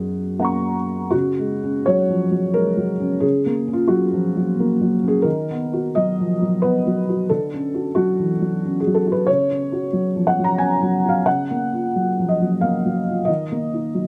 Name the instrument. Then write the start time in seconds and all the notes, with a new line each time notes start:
felt piano
Already playing: F#2 F#3 F#4 G#4
0.39 A#3 C#4 F#5 A#5
0.45 C#6
1.11 C#3 F#4
1.39 G#3
1.64 C#4
1.86 F#3 C#5
2.10 F3
2.32 F#3
2.54 G#3 A#4
2.77 F#3
3.00 C#4
3.20 C#3 G#4
3.46 A#3
3.68 C#4
3.73 F4
3.88 F#3 F#4
4.13 F3
4.37 F#3
4.60 A#3
4.81 F#3
5.03 C#4
5.08 G#4
5.22 D#3 A#4
5.50 B3
5.73 F#4
5.95 F#3 D#5
6.20 F3
6.42 F#3
6.62 B3 B4
6.87 F#3
7.09 F#4
7.29 D3 A4
7.54 C#4
7.74 F#4
7.95 F#3 F#4
8.19 E3
8.42 F#3
8.65 C#4
8.80 G#4
8.87 F#3
8.94 A4
9.07 F#4
9.12 B4
9.27 C#3 C#5
9.51 C#4
9.72 F#4
9.93 F#3
10.16 F3
10.27 F#5
10.39 F#3
10.44 A#5
10.58 C#4 G#5
10.83 F#3
11.05 F#4 F5
11.26 C#3 F#5
11.51 A#3
11.73 F4
11.96 F#3
12.19 F3
12.29 D#5
12.42 F#3
12.61 A#3 F5
12.86 F#3
13.08 F4
13.25 D#3 D#5
13.52 A#3
13.74 D#4
13.94 F#3